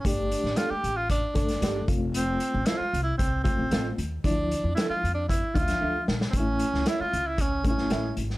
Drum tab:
HH |x-x-x-x-x-xxx-x-|x-x-x-x-x-x-x-x-|x-x-x-x-x-xx----|x-x-x-x-x-x-x-x-|
SD |---oo------oo---|----o-------o---|----o------o--oo|---oo------oo--o|
BD |o-------o-o---o-|--------o-o-----|o-------o-o-----|o-------o-o-----|